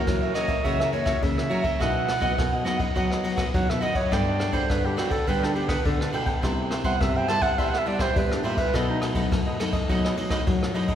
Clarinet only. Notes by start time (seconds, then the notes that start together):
Already playing: A#4
0.35 D#5
0.64 E5
0.92 C#5
1.23 E5
1.82 F#5
3.55 F#5
3.70 E5
3.82 D#5
3.96 C#5
4.13 D5
4.54 C5
4.70 B4
4.86 G4
4.97 F#4
5.11 A4
5.28 B4
5.44 D4
5.55 G4
5.69 B4
5.86 A4
6.01 D4
6.85 F#5
7.01 E5
7.17 G5
7.29 A5
7.42 F#5
7.59 E5
7.69 F#5
7.79 E5
7.88 D5
8.02 C5
8.18 B4
8.33 D4
8.45 G4
8.58 B4
8.75 A4
8.90 D#4